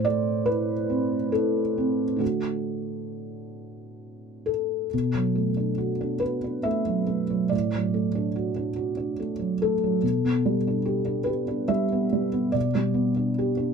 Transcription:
0.00 2.18 A2 soft
0.00 2.24 C5 medium
0.05 0.73 A3 soft
0.05 0.46 D5 medium
0.46 1.15 E4 soft
0.46 1.32 B4 medium
0.90 1.59 C4 soft
1.32 2.04 E4 soft
1.32 2.21 A4 medium
1.78 2.22 C4 soft
2.16 4.87 D3 soft
2.16 4.87 A3 soft
2.16 4.88 D4 soft
2.16 4.48 F#4 soft
4.46 6.22 A4 soft
4.93 7.49 B2 soft
5.15 5.49 F#3 soft
5.35 5.70 A3 soft
5.57 5.92 D4 soft
5.78 6.14 F#4 soft
6.01 6.37 D4 soft
6.20 6.58 F#4 soft
6.20 6.66 B4 medium
6.44 6.80 D4 soft
6.63 7.01 A3 soft
6.63 7.51 E5 medium
6.86 7.22 F#3 soft
7.07 7.42 A3 soft
7.30 7.52 F#3 soft
7.49 9.98 A2 soft
7.49 9.18 D5 soft
7.74 8.08 F#3 soft
7.94 8.28 A3 soft
8.15 8.49 D4 soft
8.36 8.70 F#4 soft
8.56 8.90 D4 soft
8.76 9.11 F#4 soft
8.97 9.32 D4 soft
9.19 9.53 A3 soft
9.39 9.73 F#3 soft
9.62 9.95 A3 soft
9.62 11.29 A4 medium
9.84 10.04 F#3 soft
10.03 12.51 B2 soft
10.25 10.57 B3 soft
10.46 10.78 G3 soft
10.67 11.00 D4 soft
10.85 11.20 G4 soft
11.05 11.41 D4 soft
11.24 11.63 G4 soft
11.24 11.70 B4 soft
11.48 11.84 D4 soft
11.68 12.04 G3 soft
11.68 12.53 E5 medium
11.92 12.26 B3 soft
12.13 12.46 G3 soft
12.33 12.67 B3 soft
12.52 13.74 B2 soft
12.52 13.74 D5 medium
12.75 13.08 G3 soft
12.94 13.28 B3 soft
13.16 13.49 D4 soft
13.39 13.71 G4 soft
13.57 13.74 D4 soft

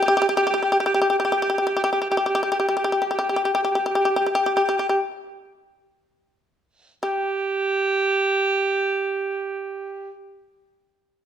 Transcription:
0.02 0.07 G4 soft
0.02 0.09 G4 soft
0.08 0.14 G4 medium
0.08 0.18 G4 soft
0.17 0.20 G4 soft
0.17 0.26 G4 soft
0.22 0.28 G4 soft
0.29 0.35 G4 soft
0.29 0.35 G4 medium
0.36 0.42 G4 soft
0.36 0.43 G4 medium
0.42 0.49 G4 soft
0.47 0.52 G4 soft
0.47 0.57 G4 soft
0.54 0.59 G4 soft
0.54 0.63 G4 soft
0.62 0.67 G4 soft
0.62 0.72 G4 soft
0.72 0.76 G4 soft
0.72 0.79 G4 soft
0.80 0.85 G4 soft
0.80 0.84 G4 soft
0.86 0.91 G4 soft
0.86 0.94 G4 soft
0.94 0.99 G4 soft
0.94 1.01 G4 soft
1.02 1.06 G4 soft
1.02 1.10 G4 soft
1.10 1.15 G4 soft
1.10 1.18 G4 soft
1.18 1.26 G4 soft
1.18 1.24 G4 soft
1.25 1.30 G4 soft
1.25 1.35 G4 soft
1.32 1.38 G4 soft
1.37 1.43 G4 soft
1.42 1.47 G4 soft
1.42 1.52 G4 soft
1.50 1.55 G4 soft
1.50 1.61 G4 soft
1.58 1.63 G4 soft
1.58 1.68 G4 soft
1.67 1.72 G4 soft
1.67 1.77 G4 soft
1.77 1.81 G4 soft
1.77 1.83 G4 soft
1.83 1.92 G4 soft
1.83 1.89 G4 soft
1.92 2.01 G4 soft
1.92 1.98 G4 soft
2.01 2.09 G4 soft
2.01 2.06 G4 soft
2.10 2.19 G4 soft
2.10 2.16 G4 soft
2.17 2.23 G4 soft
2.17 2.28 G4 soft
2.26 2.31 G4 soft
2.26 2.36 G4 soft
2.35 2.40 G4 soft
2.35 2.43 G4 soft
2.43 2.48 G4 soft
2.43 2.51 G4 soft
2.52 2.57 G4 soft
2.52 2.59 G4 soft
2.59 2.69 G4 soft
2.59 2.65 G4 soft
2.69 2.74 G4 soft
2.69 2.78 G4 soft
2.77 2.82 G4 soft
2.77 2.87 G4 soft
2.84 2.91 G4 soft
2.84 2.96 G4 soft
2.92 2.99 G4 soft
2.96 3.05 G4 soft
3.02 3.08 G4 soft
3.02 3.14 G4 soft
3.11 3.18 G4 soft
3.11 3.23 G4 soft
3.19 3.26 G4 soft
3.23 3.32 G4 soft
3.29 3.35 G4 soft
3.29 3.42 G4 soft
3.36 3.44 G4 soft
3.44 3.53 G4 soft
3.44 3.54 G4 soft
3.54 3.62 G4 soft
3.54 3.63 G4 soft
3.63 3.71 G4 soft
3.63 3.73 G4 soft
3.71 3.78 G4 soft
3.75 3.84 G4 soft
3.75 3.90 G4 soft
3.86 3.94 G4 soft
3.90 4.00 G4 soft
3.95 4.04 G4 soft
4.00 4.10 G4 soft
4.05 4.14 G4 soft
4.10 4.19 G4 soft
4.16 4.25 G4 soft
4.16 4.30 G4 soft
4.26 4.34 G4 soft
4.31 4.42 G4 soft
4.31 4.45 G4 medium
4.43 4.54 G4 soft
4.43 4.56 G4 soft
4.55 4.64 G4 soft
4.55 4.66 G4 medium
4.64 4.76 G4 soft
4.69 4.78 G4 soft
4.77 4.88 G4 soft
4.89 4.99 G4 soft
7.03 10.11 G4 soft
7.03 10.11 G4 medium

